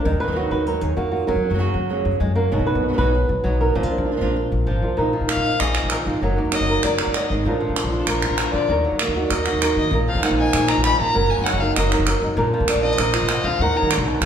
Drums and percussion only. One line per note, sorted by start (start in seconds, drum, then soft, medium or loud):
5.29 clap medium
5.60 clap medium
5.75 clap medium
5.90 clap medium
6.52 clap medium
6.83 clap medium
6.99 clap medium
7.14 clap medium
7.76 clap medium
8.07 clap medium
8.22 clap medium
8.38 clap medium
8.99 clap medium
9.30 clap medium
9.46 clap medium
9.62 clap medium
10.23 clap medium
10.53 clap medium
10.68 clap medium
10.84 clap medium
11.46 clap medium
11.76 clap medium
11.92 clap medium
12.07 clap medium
12.68 clap medium
12.98 clap medium
13.14 clap medium
13.29 clap medium
13.91 clap medium
14.22 clap medium